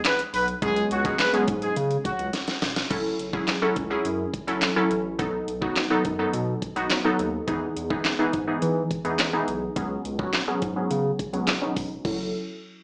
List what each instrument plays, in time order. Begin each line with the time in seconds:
Already playing: synth pluck E3 G#3 B3 D#4 G#4
0.05 horn section B3 B4, snare, clap, closed hi-hat
0.19 closed hi-hat
0.34 analog synth bass B1, horn section B3 B4, open hi-hat
0.48 closed hi-hat
0.62 analog synth bass C#2, synth pluck F#3 G#3 B3 C#4 G#4, horn section G#3 G#4, kick, closed hi-hat
0.76 closed hi-hat
0.91 analog synth bass C#2, horn section F#3 F#4, closed hi-hat
1.05 synth pluck F#3 G#3 B3 C#4 G#4, kick, closed hi-hat
1.19 horn section B3 B4, snare, clap, closed hi-hat
1.33 synth pluck F#3 G#3 B3 C#4 G#4, closed hi-hat
1.48 analog synth bass G#2, kick, closed hi-hat
1.62 horn section G#3 G#4, closed hi-hat
1.76 analog synth bass C#3, closed hi-hat
1.91 closed hi-hat
2.05 horn section F#3 F#4, kick, closed hi-hat
2.19 analog synth bass C#2, closed hi-hat
2.33 snare, closed hi-hat
2.47 snare, closed hi-hat
2.62 analog synth bass E1, snare, open hi-hat
2.76 snare, closed hi-hat
2.90 analog synth bass F#1, synth pluck F#3 C#4 E4 A4, kick, closed hi-hat, crash
3.19 analog synth bass F#1, closed hi-hat
3.33 synth pluck F#3 C#4 E4 G#4, kick
3.47 snare, clap, closed hi-hat
3.62 synth pluck F#3 C#4 E4 A4
3.76 analog synth bass C#2, kick, closed hi-hat
3.90 synth pluck F#3 C#4 E4 G#4
4.05 analog synth bass F#2, closed hi-hat
4.34 kick, closed hi-hat
4.47 analog synth bass F#1, synth pluck F#3 C#4 E4 A4, closed hi-hat
4.62 snare, clap, closed hi-hat
4.76 synth pluck F#3 C#4 E4 A4
4.91 analog synth bass A1, closed hi-hat
5.19 analog synth bass B1, synth pluck F#3 B3 D#4 A4, kick, closed hi-hat
5.48 analog synth bass B1, closed hi-hat
5.62 synth pluck F#3 B3 D#4 F#4, kick
5.76 snare, clap, closed hi-hat
5.90 synth pluck F#3 B3 D#4 A4
6.05 analog synth bass F#2, kick, closed hi-hat
6.19 synth pluck F#3 B3 D#4 A4
6.33 analog synth bass B2, closed hi-hat
6.62 kick, closed hi-hat
6.76 analog synth bass B1, synth pluck F#3 B3 D#4 F#4, closed hi-hat
6.90 snare, clap, closed hi-hat
7.05 synth pluck F#3 B3 D#4 A4
7.19 analog synth bass D#2, closed hi-hat
7.47 analog synth bass E2, synth pluck E3 B3 D#4 G#4, kick, closed hi-hat
7.76 analog synth bass E2, closed hi-hat
7.90 synth pluck E3 B3 D#4 G#4, kick
8.05 snare, clap, closed hi-hat
8.19 synth pluck E3 B3 D#4 G#4
8.33 analog synth bass G#2, kick, closed hi-hat
8.47 synth pluck E3 B3 D#4 G#4
8.62 analog synth bass E3, closed hi-hat
8.91 kick, closed hi-hat
9.05 analog synth bass E2, synth pluck E3 B3 D#4 G#4, closed hi-hat
9.19 snare, clap, closed hi-hat
9.33 synth pluck E3 B3 D#4 G#4
9.48 analog synth bass B1, closed hi-hat
9.76 analog synth bass C#2, synth pluck F#3 B3 C#4 G#4, kick, closed hi-hat
10.05 analog synth bass C#2, closed hi-hat
10.19 synth pluck F#3 B3 C#4 F#4, kick
10.33 snare, clap, closed hi-hat
10.47 synth pluck F#3 B3 C#4 G#4
10.62 analog synth bass G#2, kick, closed hi-hat
10.76 synth pluck F#3 B3 C#4 G#4
10.91 analog synth bass C#3, closed hi-hat
11.19 kick, closed hi-hat
11.33 analog synth bass C#2, synth pluck F#3 B3 C#4 G#4, closed hi-hat
11.47 snare, clap, closed hi-hat
11.62 synth pluck F#3 B3 C#4 D#4
11.76 analog synth bass E1, kick, open hi-hat
12.05 analog synth bass F#1, synth pluck F#3 C#4 E4 A4, kick, crash